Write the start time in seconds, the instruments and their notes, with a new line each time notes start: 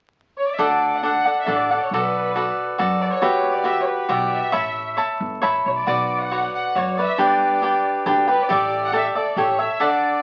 0.38 violin section C#5
0.48 violin section D5
0.56 upright bass D2, cavaquinho D4 A4 D5 F#5, violin section E5
0.64 violin section D5
0.96 violin section F#5
1.03 cavaquinho D4 A4 D5 F#5
1.09 violin section F#5
1.25 cavaquinho A4 D5 F#5
1.41 violin section E5
1.46 upright bass A1, cavaquinho D4 A4 D5 F#5
1.55 violin section D5
1.71 cavaquinho A4 D5 F#5
1.83 violin section C#5
1.91 upright bass B1, cavaquinho F#4 A4 B4 D5
1.97 violin section B4
2.36 cavaquinho F#4 A4 B4 D5
2.78 upright bass F#2, cavaquinho F#4 A4 B4 D5
3.01 violin section D5
3.10 violin section C#5
3.22 upright bass E2, cavaquinho F#4 G4 B4 E5
3.54 violin section D5
3.63 cavaquinho F#4 G4 B4 E5, violin section E5
3.82 violin section C#5
3.86 violin section B4
4.09 upright bass B1, cavaquinho F#4 G4 B4 E5, violin section D5
4.31 violin section E5
4.52 upright bass A1, cavaquinho C#5 E5 A5 B5
4.97 cavaquinho C#5 E5 A5 B5
5.20 upright bass G1
5.42 upright bass A1, cavaquinho C#5 E5 A5 B5
5.65 upright bass B1, violin section C#5
5.73 violin section D5
5.87 upright bass B1, cavaquinho F#4 B4 D5
6.19 violin section F#5
6.31 cavaquinho F#4 B4 C#5 D5
6.53 violin section F#5
6.75 upright bass F#2, cavaquinho F#4 B4 C#5 D5, violin section C#5
6.98 cavaquinho B4 C#5 D5, violin section E5
7.18 upright bass G1, cavaquinho D4 G4 B4 G5
7.23 violin section D5
7.62 cavaquinho D4 G4 B4 G5
8.06 upright bass D2, cavaquinho D4 G4 B4 G5
8.27 cavaquinho G4 B4 G5, violin section B4
8.42 violin section D5
8.49 upright bass A1, cavaquinho G4 A4 D5 E5
8.84 violin section F#5
8.92 cavaquinho G4 A4 D5 E5
8.97 violin section E5
9.15 cavaquinho A4 D5 E5, violin section D5
9.36 upright bass A1, cavaquinho G4 A4 C#5 E5, violin section C#5
9.58 cavaquinho A4 C#5 E5, violin section E5
9.80 cavaquinho D4 A4 D5 F#5, violin section D5